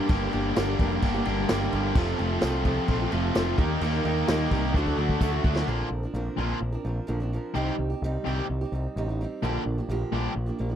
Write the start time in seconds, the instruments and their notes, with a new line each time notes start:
Already playing: tonewheel organ A#3 D4 G4 A#4, distorted electric guitar D4 G4
0.08 picked electric bass G1, steel-string acoustic guitar G2 D3 G3 A#3 D4 G4, kick, crash
0.31 picked electric bass G1, distorted electric guitar G2 D3, steel-string acoustic guitar G3 A#3 D4 G4, crash
0.56 picked electric bass G1, steel-string acoustic guitar G2 D3 G3 A#3 D4 G4, snare, tambourine, crash
0.78 picked electric bass F1, distorted electric guitar G2 D3, steel-string acoustic guitar G3 A#3 D4, kick, crash
0.82 steel-string acoustic guitar G4
0.91 steel-string acoustic guitar G3 A#3 D4 G4
1.02 picked electric bass G1, distorted electric guitar G2 D3 G3 A#3 D4 G4, kick, crash
1.14 steel-string acoustic guitar G3 A#3 D4 G4
1.25 picked electric bass G1, distorted electric guitar G2 D3, steel-string acoustic guitar G3 A#3 D4, crash
1.29 steel-string acoustic guitar G4
1.48 picked electric bass G1, steel-string acoustic guitar G2 D3 G3 A#3 D4 G4, snare, tambourine, crash
1.61 steel-string acoustic guitar G3 A#3 D4 G4
1.72 picked electric bass G1, distorted electric guitar G2 D3, steel-string acoustic guitar G3 A#3 D4, crash
1.76 steel-string acoustic guitar G4
1.95 picked electric bass F1, distorted electric guitar F2 C3 A3, steel-string acoustic guitar F3 C4 F4 A4, tonewheel organ A3 C4 F4 A4, kick, crash
2.18 picked electric bass F1, distorted electric guitar F2 C3 A3, steel-string acoustic guitar F3 C4 F4 A4, crash
2.41 picked electric bass C2, distorted electric guitar F2 C3 A3, steel-string acoustic guitar F3 C4 F4 A4, snare, tambourine, crash
2.64 distorted electric guitar F2 C3 A3, steel-string acoustic guitar F3 C4 F4 A4, kick, crash
2.76 steel-string acoustic guitar C4 F4 A4
2.87 picked electric bass A#1, distorted electric guitar F2 C3 F3 A3 C4 F4, kick, crash
2.99 steel-string acoustic guitar C4 F4 A4
3.10 picked electric bass F1, distorted electric guitar F2 C3 A3, steel-string acoustic guitar F3 C4, crash
3.14 distorted electric guitar F2, steel-string acoustic guitar F4 A4
3.33 picked electric bass F1, distorted electric guitar F2 C3 A3, steel-string acoustic guitar F3 C4 F4, snare, tambourine, crash
3.38 steel-string acoustic guitar A4
3.46 steel-string acoustic guitar C4 F4 A4
3.57 picked electric bass D#2, distorted electric guitar D#3 G4, steel-string acoustic guitar G3 A#3 D#4 A#4, tonewheel organ A#3 D#4 G4 A#4, kick, crash
3.81 picked electric bass D#2, steel-string acoustic guitar D#3 G3 A#3 D#4 A#4, distorted electric guitar G4, crash
4.04 picked electric bass D#2, distorted electric guitar D#3 G4, steel-string acoustic guitar G3 A#3, crash
4.08 steel-string acoustic guitar D#4 A#4
4.28 picked electric bass D#2, steel-string acoustic guitar D#3 G3 A#3 D#4 A#4, distorted electric guitar G4, snare, tambourine, crash
4.51 picked electric bass C2, distorted electric guitar D#3 G4, steel-string acoustic guitar G3 A#3 D#4, kick, crash
4.56 steel-string acoustic guitar A#4
4.65 steel-string acoustic guitar A#3 D#4 A#4
4.74 picked electric bass D2, steel-string acoustic guitar D3 A3 D4, distorted electric guitar F#3, tonewheel organ A3 D4 F#4 A4, kick
4.79 steel-string acoustic guitar F#4 A4
4.86 steel-string acoustic guitar F#4 A4, kick
4.90 steel-string acoustic guitar D4
4.97 picked electric bass D2, distorted electric guitar D3, steel-string acoustic guitar A3 D4 F#4 A4
5.09 kick
5.21 picked electric bass D2, steel-string acoustic guitar D3 A3 D4 F#4 A4, kick, tambourine
5.32 steel-string acoustic guitar D4 F#4 A4
5.43 picked electric bass D2, distorted electric guitar D3, steel-string acoustic guitar A3 D4 F#4 A4, kick
5.56 snare
5.67 picked electric bass A#1, steel-string acoustic guitar A#2 D3 F3 C4 D4 A#4, distorted electric guitar A#3 F4
5.91 picked electric bass A#1
6.03 steel-string acoustic guitar F3 C4 D4 A#4
6.14 picked electric bass A#1, steel-string acoustic guitar A#2 D3 F3 C4 D4 A#4
6.37 picked electric bass A#1, distorted electric guitar A#2 D3 A#3 F4, steel-string acoustic guitar F3 C4 D4
6.41 steel-string acoustic guitar A#4
6.61 picked electric bass A#1
6.72 steel-string acoustic guitar F3 C4 D4 A#4
6.85 picked electric bass A#1, steel-string acoustic guitar F3 C4 D4 A#4
7.07 picked electric bass A#1, steel-string acoustic guitar A#2 D3 F3 C4 D4 A#4
7.20 steel-string acoustic guitar F3 C4 D4 A#4
7.33 steel-string acoustic guitar F3 C4 D4 A#4
7.54 picked electric bass C2, steel-string acoustic guitar C3 G3 C4 D#4 G4, distorted electric guitar D#3
7.79 picked electric bass C2
7.90 steel-string acoustic guitar C4 D#4 G4
8.02 picked electric bass C2, steel-string acoustic guitar C3 G3 C4 D#4 G4
8.24 picked electric bass C2, distorted electric guitar C3 D#3 G4, steel-string acoustic guitar G3 C4
8.29 steel-string acoustic guitar D#4 G4
8.50 picked electric bass C2
8.61 steel-string acoustic guitar D#4 G4
8.65 steel-string acoustic guitar C4
8.72 picked electric bass C2, steel-string acoustic guitar G3 C4 D#4 G4
8.96 picked electric bass A1, steel-string acoustic guitar C3 G3 C4 D#4 G4
9.09 steel-string acoustic guitar C4 D#4 G4
9.21 steel-string acoustic guitar G3 C4 D#4 G4
9.43 picked electric bass A#1, steel-string acoustic guitar A#2 D3 F3 A#3 D4 G4, distorted electric guitar G3
9.66 picked electric bass A#1
9.78 steel-string acoustic guitar F3 A#3 D4 G4
9.88 picked electric bass A#1, steel-string acoustic guitar A#2 D3 F3 A#3 D4 G4
10.12 picked electric bass A#1, distorted electric guitar A#2 D3 G3, steel-string acoustic guitar F3 A#3 D4
10.17 steel-string acoustic guitar G4
10.36 picked electric bass A#1
10.46 steel-string acoustic guitar F3 A#3 D4 G4
10.59 picked electric bass A#1, steel-string acoustic guitar F3 A#3 D4 G4
10.69 steel-string acoustic guitar F3 A#3 D4 G4